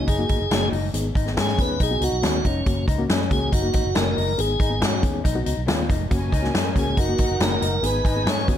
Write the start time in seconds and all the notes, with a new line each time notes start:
0.07 F#1 D#4 G#4, kick, closed hi-hat
0.19 A#3 D#4 F#4
0.29 G#1 D#4, kick, closed hi-hat
0.40 F#1
0.51 F#1 A#3 C#4 D#4 F#4, snare, closed hi-hat
0.72 F#1 D#4, open hi-hat
0.94 G#1 B3 D#4 G#4, closed hi-hat
1.15 G#1 D#4, kick, closed hi-hat
1.26 B3 D#4 G#4, snare
1.37 G#2 C#4 G#4, snare, closed hi-hat
1.48 snare
1.58 D#2 B3 D#4 G#4 B4, kick, closed hi-hat
1.80 B1 D#4 G#4, kick, closed hi-hat
1.91 B3 D#4 F#4
2.01 C#2 D#4 F#4, closed hi-hat
2.12 B1
2.22 D#2 B3 C#4 D#4 F#4, snare, closed hi-hat
2.45 F1 C#4 D#4, kick, closed hi-hat
2.66 F#1 A#3 C#4 F#4, kick, closed hi-hat
2.88 C#2 D#4, kick, closed hi-hat
2.99 A#3 C#4 F#4
3.09 F#2 C#4, snare, closed hi-hat
3.21 snare
3.31 C#2 A#3 C#4 F#4 G#4, kick, closed hi-hat
3.52 F#1 D#4 F#4, kick, closed hi-hat
3.62 A#3 D#4 F#4
3.73 G#1 D#4, kick, closed hi-hat
3.85 F#1
3.95 F#1 A#3 C#4 D#4 F#4 A#4, snare, closed hi-hat
4.17 F#1 D#4, open hi-hat
4.38 G#1 B3 D#4 G#4, closed hi-hat
4.60 G#1 D#4, kick, closed hi-hat
4.70 B3 D#4 G#4
4.81 G#2 C#4 F#4, snare, closed hi-hat
5.03 D#2 B3 D#4 G#4, kick, closed hi-hat
5.24 B1 D#4, kick, closed hi-hat
5.35 B3 D#4 F#4
5.46 C#2 D#4, closed hi-hat
5.57 B1
5.67 D#2 B3 C#4 D#4 F4, snare, closed hi-hat
5.89 F1 D#4, kick, closed hi-hat
6.11 F#1 A#3 C#4 F#4 A#4 G#5, kick, closed hi-hat
6.32 C#2 D#4, kick, closed hi-hat
6.42 A#3 C#4 F#4, snare
6.54 F#2 C#4, snare, closed hi-hat
6.75 C#2 A#3 C#4 F#4 G#4, kick, closed hi-hat
6.97 F#1 D#4 F#4 A#4 F#5, kick, closed hi-hat
7.09 A#3 D#4 F#4
7.18 G#1 D#4, kick, closed hi-hat
7.29 F#1
7.39 F#1 A#3 C#4 D#4 F#4 A#4, snare, closed hi-hat
7.62 F#1 D#4, closed hi-hat
7.83 G#1 B3 D#4 G#4 B4 G#5, closed hi-hat
8.05 G#1 D#4, kick, closed hi-hat
8.16 B3 D#4 G#4
8.26 G#2 C#4 C#5, snare, closed hi-hat
8.38 snare
8.48 D#2 B3 D#4 F#4, kick, closed hi-hat